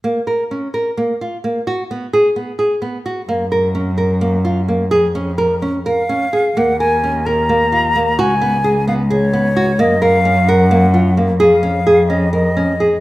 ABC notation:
X:1
M:7/8
L:1/8
Q:1/4=130
K:Ebm
V:1 name="Flute"
z6 z | z6 z | z6 z | z4 f3 |
g a2 b4 | a3 f d3 | e f2 g3 z | f3 e e3 |]
V:2 name="Nylon-string guitar"
B, B D B B, F B, | G C A C A C G | B, B D B B, F B, | A D B D B D A |
B, B D B B, F B, | G C A C A C G | B, B D B B, F B, | A D A D B D A |]
V:3 name="Cello" clef=bass
z6 z | z6 z | G,,6- G,, | F,,4 z3 |
E,,6- E,, | D,,6- D,, | G,,6- G,, | F,,6- F,, |]